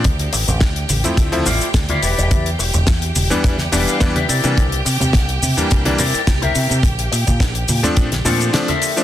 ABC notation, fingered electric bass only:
X:1
M:4/4
L:1/16
Q:"Swing 16ths" 1/4=106
K:Cmix
V:1 name="Fingered electric bass" clef=bass
D,,2 A,,, A,,, z2 A,,, z D,,2 A,,, z D,,2 E,,, E,,, | E,,2 E,,, E,,, E,,2 E,,, z E,,2 E,,, z E,,2 C, C, | C,,2 C, C, C,,2 C, z C,,2 C, z C,,2 C, C, | B,,,2 B,, B,, B,,,2 B,, z B,,,2 B,,2 z4 |]